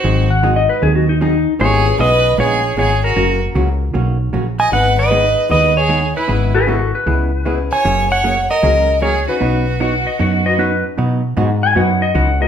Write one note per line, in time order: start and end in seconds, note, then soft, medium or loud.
0.00 0.27 D#3 medium
0.00 0.28 F#4 medium
0.00 0.28 C5 medium
0.04 0.67 G#1 medium
0.04 0.27 F#3 medium
0.04 0.27 C4 medium
0.04 0.27 D#4 medium
0.04 0.27 G#4 medium
0.30 0.56 F#5 loud
0.43 0.55 D#3 medium
0.43 0.55 F#3 medium
0.43 1.03 G#3 medium
0.43 0.55 C4 medium
0.43 1.03 C4 soft
0.43 0.56 D#4 medium
0.43 1.03 D#4 medium
0.43 1.04 F#4 medium
0.43 0.56 G#4 medium
0.56 0.69 D#5 medium
0.69 0.82 B4 medium
0.82 1.45 D#2 medium
0.82 1.05 D#3 medium
0.82 1.05 F#3 medium
0.82 1.05 C4 medium
0.82 1.05 D#4 medium
0.82 0.95 G#4 medium
0.82 1.05 G#4 medium
0.95 1.08 F#4 medium
1.09 1.21 D#4 medium
1.21 1.33 D#3 medium
1.21 1.33 F#3 medium
1.21 1.33 C4 medium
1.21 1.34 D#4 medium
1.21 1.53 D#4 loud
1.21 1.34 G#4 medium
1.59 1.92 G#1 medium
1.59 1.82 C#3 medium
1.59 1.83 G#3 medium
1.59 1.83 A#3 medium
1.59 1.83 B3 medium
1.59 1.84 C4 medium
1.59 1.84 E4 medium
1.59 1.83 F4 medium
1.59 1.84 G4 medium
1.59 1.83 G#4 medium
1.59 1.97 G#4 medium
1.59 1.97 C#5 loud
1.86 2.70 B3 medium
1.86 2.70 C#4 medium
1.86 2.70 F4 medium
1.86 2.70 G#4 medium
1.99 2.33 B1 medium
1.99 2.11 C#3 medium
1.99 2.11 G#3 medium
1.99 2.11 B3 medium
1.99 2.11 F4 medium
1.99 2.11 G#4 medium
1.99 2.36 B4 medium
1.99 2.40 D#5 medium
2.38 2.71 A#1 medium
2.38 2.61 C#3 medium
2.38 2.61 G#3 medium
2.38 2.61 B3 medium
2.38 2.61 F4 medium
2.38 2.61 G#4 medium
2.38 2.75 G#4 medium
2.38 2.76 C#5 medium
2.77 3.11 G#1 medium
2.77 2.89 C#3 medium
2.77 2.89 G#3 medium
2.77 2.90 B3 medium
2.77 2.90 F4 medium
2.77 2.90 G#4 medium
2.77 3.02 G#4 medium
2.77 3.02 C#5 medium
3.04 3.40 F#4 medium
3.04 3.40 A#4 medium
3.16 3.48 F#1 medium
3.16 3.39 C#3 medium
3.16 3.39 F#3 medium
3.16 3.76 A#3 medium
3.16 3.39 A#3 medium
3.16 3.76 C#4 medium
3.16 3.39 C#4 medium
3.16 3.76 F#4 medium
3.16 3.39 F#4 medium
3.16 3.77 A#4 medium
3.55 3.89 C#2 medium
3.55 3.67 C#3 medium
3.55 3.67 F#3 medium
3.55 3.68 A#3 medium
3.55 3.68 C#4 medium
3.55 3.68 F#4 medium
3.94 4.28 B1 medium
3.94 4.17 C#3 soft
3.94 4.17 F#3 medium
3.94 4.17 A#3 medium
3.94 4.17 C#4 medium
3.94 4.17 F#4 medium
4.33 4.67 A#1 medium
4.33 4.45 C#3 medium
4.33 4.45 F#3 medium
4.33 4.46 A#3 medium
4.33 4.46 C#4 medium
4.33 4.46 F#4 medium
4.59 4.72 D#5 medium
4.59 4.72 G#5 medium
4.72 5.35 G#1 medium
4.72 4.95 D#3 medium
4.72 4.95 G#3 medium
4.72 4.95 B3 medium
4.72 4.95 D#4 medium
4.72 4.95 G#4 medium
4.72 4.97 B4 medium
4.72 4.97 F#5 loud
4.98 5.47 B4 medium
4.98 5.50 D#5 medium
5.11 5.23 D#3 medium
5.11 5.23 G#3 medium
5.11 5.71 B3 medium
5.11 5.23 B3 medium
5.11 5.71 D#4 medium
5.11 5.24 D#4 medium
5.11 5.71 G#4 soft
5.11 5.24 G#4 medium
5.11 5.72 B4 medium
5.50 6.13 D#2 medium
5.50 5.73 D#3 medium
5.50 5.73 G#3 medium
5.50 5.73 B3 medium
5.50 5.73 D#4 medium
5.50 5.73 G#4 medium
5.50 5.75 B4 medium
5.50 5.78 D#5 medium
5.77 6.13 G#4 medium
5.77 6.13 C#5 medium
5.89 6.01 D#3 medium
5.89 6.01 G#3 medium
5.89 6.02 B3 medium
5.89 6.02 D#4 medium
5.89 6.02 G#4 medium
6.16 6.52 E4 medium
6.16 6.53 B4 medium
6.28 6.92 G#1 medium
6.28 6.51 C#3 medium
6.28 6.51 G#3 medium
6.28 6.51 B3 medium
6.28 6.51 E4 medium
6.28 6.51 G#4 medium
6.54 6.68 G#4 medium
6.54 6.68 B4 medium
6.67 6.79 C#3 medium
6.67 6.80 G#3 medium
6.67 6.80 B3 medium
6.67 6.80 E4 medium
6.67 6.94 F#4 medium
6.67 6.80 G#4 medium
6.67 6.93 A4 medium
6.95 7.58 B4 medium
7.06 7.69 C#2 medium
7.06 7.29 C#3 medium
7.06 7.29 G#3 medium
7.06 7.30 B3 medium
7.06 7.30 E4 medium
7.06 7.30 G#4 medium
7.45 7.58 C#3 medium
7.45 7.58 G#3 medium
7.45 7.58 B3 medium
7.45 7.69 C#4 medium
7.45 7.69 E4 medium
7.45 7.58 E4 medium
7.45 7.69 G#4 medium
7.45 7.58 G#4 medium
7.45 7.69 B4 medium
7.72 8.08 C#5 medium
7.72 8.11 G#5 medium
7.85 8.48 F#1 medium
7.85 8.08 F#3 medium
7.85 8.08 A#3 medium
7.85 8.08 C#4 medium
7.85 8.08 G#4 medium
8.10 8.47 C#5 medium
8.10 8.52 F#5 medium
8.24 8.36 F#3 medium
8.24 8.36 A#3 medium
8.24 8.36 C#4 medium
8.24 8.37 G#4 medium
8.50 8.99 A#4 medium
8.50 8.99 D#5 medium
8.63 9.26 C#2 medium
8.63 8.86 F#3 medium
8.63 8.86 A#3 medium
8.63 8.86 C#4 medium
8.63 8.87 F#4 medium
8.63 8.87 G#4 medium
8.63 8.86 G#4 medium
8.63 8.87 A#4 medium
9.02 9.14 F#3 medium
9.02 9.14 A#3 medium
9.02 9.14 C#4 medium
9.02 9.26 G#4 medium
9.02 9.14 G#4 medium
9.02 9.26 C#5 medium
9.28 9.78 C#4 medium
9.28 9.78 D#4 medium
9.28 9.78 F#4 medium
9.28 10.55 F#4 medium
9.28 9.78 B4 medium
9.28 10.55 B4 medium
9.41 10.04 B1 medium
9.41 9.64 B3 medium
9.41 9.64 D#4 medium
9.41 9.64 F#4 medium
9.41 9.64 C#5 medium
9.80 9.92 B3 medium
9.80 9.92 D#4 medium
9.80 9.93 F#4 medium
9.80 9.93 C#5 medium
9.80 10.06 F#5 medium
10.07 10.19 D#5 medium
10.19 10.82 F#2 medium
10.19 10.42 B3 medium
10.19 10.42 D#4 medium
10.19 10.42 F#4 medium
10.19 10.43 C#5 medium
10.19 10.45 F#5 medium
10.45 10.95 C#4 medium
10.45 10.95 D#4 medium
10.45 10.95 F#4 medium
10.45 10.95 B4 medium
10.45 10.59 D#5 medium
10.58 10.71 B3 medium
10.58 10.71 D#4 medium
10.58 10.71 F#4 medium
10.58 10.84 B4 loud
10.58 10.71 C#5 medium
10.98 11.20 B2 medium
10.98 11.36 B2 medium
10.98 11.20 F#3 medium
10.98 11.21 B3 medium
10.98 11.21 D#4 medium
10.98 11.21 F#4 medium
11.37 11.75 G#2 medium
11.37 11.49 B2 medium
11.37 11.49 F#3 medium
11.37 11.49 B3 medium
11.37 11.49 D#4 medium
11.37 11.49 F#4 medium
11.63 11.76 G#5 medium
11.75 12.14 F#2 medium
11.75 11.98 B2 medium
11.75 11.99 F#3 medium
11.75 11.99 B3 medium
11.75 11.99 D#4 medium
11.75 11.99 F#4 medium
11.75 12.00 B4 medium
11.75 12.02 F#5 medium
12.02 12.15 D#5 medium
12.15 12.48 C#2 medium
12.15 12.27 B2 medium
12.15 12.27 F#3 medium
12.15 12.27 B3 medium
12.15 12.27 D#4 medium
12.15 12.27 F#4 medium
12.15 12.40 F#5 medium
12.41 12.48 G#3 medium
12.41 12.48 B3 medium
12.41 12.48 E4 medium
12.41 12.48 F#4 medium
12.41 12.48 A#4 medium
12.41 12.48 D#5 medium